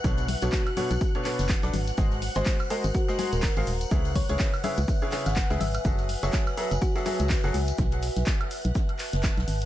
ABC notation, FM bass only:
X:1
M:4/4
L:1/16
Q:"Swing 16ths" 1/4=124
K:Bdor
V:1 name="FM bass" clef=bass
B,,,3 B,,, z3 B,,, z3 F,,, z B,,, G,,, z | G,,,3 G,,, z3 G,,, z3 ^D,,, z G,,, D,,, z | C,,3 C,, z3 C,, z3 G,,, z C,, G,,, z | F,,,3 F,,, z3 F,,, z3 C,, z F,,, C,, z |
B,,,3 B,,, z3 B,,, z3 F,,, z B,,, G,,, z |]